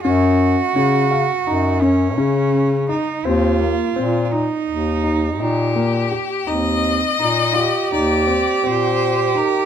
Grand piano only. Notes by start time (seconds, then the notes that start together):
0.05 C#4
0.76 C#4
1.11 F5
1.47 D#4
1.82 C#4
2.18 C#4
2.89 D#4
3.25 C4
3.60 A#3
3.96 C4
4.32 D#4
5.04 D#4
5.40 D#4
5.76 A#3
6.12 G4
6.47 D#4
7.19 D#4
7.56 F4
7.92 D#4
8.27 C4
8.63 C4
9.35 D#4